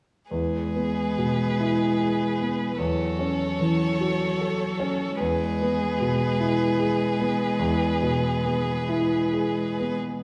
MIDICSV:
0, 0, Header, 1, 5, 480
1, 0, Start_track
1, 0, Key_signature, 4, "major"
1, 0, Tempo, 840336
1, 183, Time_signature, 6, 3, 24, 8
1, 1139, Tempo, 801068
1, 4499, Tempo, 841515
1, 4979, Tempo, 892857
1, 5940, End_track
2, 0, Start_track
2, 0, Title_t, "Violin"
2, 0, Program_c, 0, 40
2, 186, Note_on_c, 0, 71, 34
2, 1612, Note_on_c, 0, 73, 39
2, 1621, Note_off_c, 0, 71, 0
2, 3052, Note_off_c, 0, 73, 0
2, 3062, Note_on_c, 0, 71, 46
2, 5809, Note_off_c, 0, 71, 0
2, 5940, End_track
3, 0, Start_track
3, 0, Title_t, "Violin"
3, 0, Program_c, 1, 40
3, 180, Note_on_c, 1, 68, 32
3, 1592, Note_off_c, 1, 68, 0
3, 1619, Note_on_c, 1, 69, 34
3, 3032, Note_off_c, 1, 69, 0
3, 3061, Note_on_c, 1, 68, 43
3, 5808, Note_off_c, 1, 68, 0
3, 5940, End_track
4, 0, Start_track
4, 0, Title_t, "Grand piano"
4, 0, Program_c, 2, 0
4, 177, Note_on_c, 2, 40, 32
4, 303, Control_c, 2, 64, 127
4, 432, Note_on_c, 2, 59, 27
4, 671, Note_on_c, 2, 47, 28
4, 812, Note_off_c, 2, 59, 0
4, 912, Note_on_c, 2, 64, 29
4, 1047, Note_off_c, 2, 47, 0
4, 1143, Note_on_c, 2, 68, 30
4, 1288, Note_off_c, 2, 64, 0
4, 1383, Note_on_c, 2, 59, 26
4, 1524, Note_off_c, 2, 68, 0
4, 1590, Note_off_c, 2, 40, 0
4, 1613, Note_on_c, 2, 40, 37
4, 1619, Note_off_c, 2, 59, 0
4, 1628, Control_c, 2, 64, 0
4, 1741, Control_c, 2, 64, 127
4, 1857, Note_on_c, 2, 61, 31
4, 2098, Note_on_c, 2, 52, 30
4, 2243, Note_off_c, 2, 61, 0
4, 2343, Note_on_c, 2, 66, 31
4, 2482, Note_off_c, 2, 52, 0
4, 2587, Note_on_c, 2, 69, 33
4, 2722, Note_off_c, 2, 66, 0
4, 2819, Note_on_c, 2, 61, 33
4, 2964, Note_off_c, 2, 69, 0
4, 3029, Note_off_c, 2, 40, 0
4, 3057, Note_off_c, 2, 61, 0
4, 3061, Note_on_c, 2, 40, 39
4, 3064, Control_c, 2, 64, 0
4, 3162, Control_c, 2, 64, 127
4, 3307, Note_on_c, 2, 59, 34
4, 3541, Note_on_c, 2, 47, 32
4, 3685, Note_off_c, 2, 59, 0
4, 3777, Note_on_c, 2, 64, 37
4, 3921, Note_off_c, 2, 47, 0
4, 4015, Note_on_c, 2, 68, 38
4, 4159, Note_off_c, 2, 64, 0
4, 4258, Note_on_c, 2, 59, 29
4, 4401, Note_off_c, 2, 68, 0
4, 4478, Note_off_c, 2, 40, 0
4, 4493, Note_on_c, 2, 40, 40
4, 4509, Control_c, 2, 64, 0
4, 4588, Control_c, 2, 64, 127
4, 4643, Note_off_c, 2, 59, 0
4, 4737, Note_on_c, 2, 47, 31
4, 4982, Note_on_c, 2, 59, 34
4, 5120, Note_off_c, 2, 47, 0
4, 5219, Note_on_c, 2, 64, 34
4, 5358, Note_off_c, 2, 59, 0
4, 5459, Note_on_c, 2, 68, 33
4, 5603, Note_off_c, 2, 64, 0
4, 5705, Note_on_c, 2, 59, 25
4, 5849, Note_off_c, 2, 68, 0
4, 5915, Note_off_c, 2, 40, 0
4, 5940, Note_off_c, 2, 59, 0
4, 5940, End_track
5, 0, Start_track
5, 0, Title_t, "Cello"
5, 0, Program_c, 3, 42
5, 177, Note_on_c, 3, 56, 32
5, 1590, Note_off_c, 3, 56, 0
5, 1627, Note_on_c, 3, 54, 35
5, 3036, Note_off_c, 3, 54, 0
5, 3054, Note_on_c, 3, 56, 42
5, 5805, Note_off_c, 3, 56, 0
5, 5940, End_track
0, 0, End_of_file